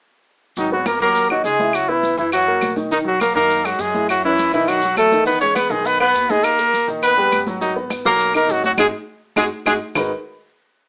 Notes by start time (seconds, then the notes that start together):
0.57 G#1 D#3 F#3 D#4 F#4, high conga, maracas
0.72 F#3 B3 F#4 B4, high conga
0.86 A#3 A#4, high conga, claves, maracas
1.00 D#2 F#3 A#3 F#4 A#4, high conga, maracas
1.15 high conga, maracas
1.30 F#3 D#4 F#4 D#5, high conga, claves
1.44 C#2 G#3 G#4, high conga, maracas
1.60 E4 E5, high conga, maracas
1.73 F#3 F#4, high conga, claves, maracas
1.89 E3 B3 E4 B4, high conga
2.03 high conga, maracas
2.17 F#2 E3 E4, maracas
2.32 F#3 F#4, high conga, claves, maracas
2.48 A#3 A#4, high conga
2.61 B1, high conga, claves, maracas
2.76 D#3 D#4, high conga, maracas
2.91 D#3 D#4, maracas
3.04 F#3 F#4, high conga
3.20 A#3 A#4, high conga, claves, maracas
3.35 F#2 D#3 A#3 D#4 A#4, high conga, maracas
3.50 high conga, maracas
3.65 F#3 G#3 F#4 G#4, high conga, claves, maracas
3.79 F#2 G#3 G#4, high conga, maracas
3.94 E4 E5, high conga, maracas
4.09 F#3 F#4, claves, maracas
4.24 E3 C#4 E4 C#5, high conga
4.39 high conga, maracas
4.53 B1 D#3 E3 D#4 E4, maracas
4.68 F#3 F#4, high conga, claves, maracas
4.82 F#3 F#4, high conga, maracas
4.97 E2 A3 A4, high conga, claves, maracas
5.12 D#3 D#4, high conga, maracas
5.26 D#3 B3 D#4 B4, high conga, maracas
5.41 G#3 C#4 G#4 C#5, high conga, maracas
5.55 B3 B4, high conga, claves, maracas
5.70 B1 D#3 G#3 D#4 G#4, high conga, maracas
5.85 B3 B4, high conga, maracas
6.00 B3 B4, high conga, claves
6.14 D#2, high conga, maracas
6.29 G#3 D#4 G#4 D#5, high conga, maracas
6.44 A#3 A#4, high conga, claves, maracas
6.58 A#3 A#4, high conga, maracas
6.74 high conga, maracas
6.88 A#1 D#3 D#4, maracas
7.03 B3 B4, high conga, claves, maracas
7.17 G3 G4, high conga
7.32 G#1, high conga, claves, maracas
7.47 F#3 F#4, high conga, maracas
7.61 D#3 F#3 D#4 F#4, high conga, maracas
7.76 B3 B4, high conga
7.90 high conga, claves, maracas
8.05 B1 F#3 A#3 F#4 A#4, high conga, maracas
8.20 high conga, maracas
8.34 A#3 D#4 A#4 D#5, high conga, claves, maracas
8.49 G#1 F#3 F#4, high conga, maracas
8.63 F#3 F#4 F#5, high conga, maracas
8.78 G#1 G#3 D#4 F#4 G#4, high conga, claves, maracas
9.36 G#1 G#3 D#4 F#4 G#4, high conga, claves, maracas
9.66 G#1 G#3 D#4 F#4 G#4, high conga, claves, maracas
9.95 G#1 G#3 D#4 F#4 G#4 A#4 B4, low conga, claves, maracas